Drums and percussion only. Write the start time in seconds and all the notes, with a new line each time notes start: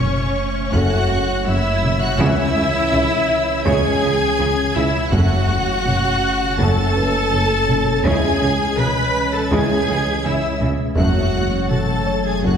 0.00 taiko low-mid
0.74 taiko
1.83 taiko low-mid
2.20 taiko
2.93 taiko low-mid
3.66 taiko
4.76 taiko low-mid
5.12 taiko
5.86 taiko low-mid
6.59 taiko
7.69 taiko low-mid
8.05 taiko
8.78 taiko low-mid
9.51 taiko
10.61 taiko low-mid
10.97 taiko
11.71 taiko low-mid
12.44 taiko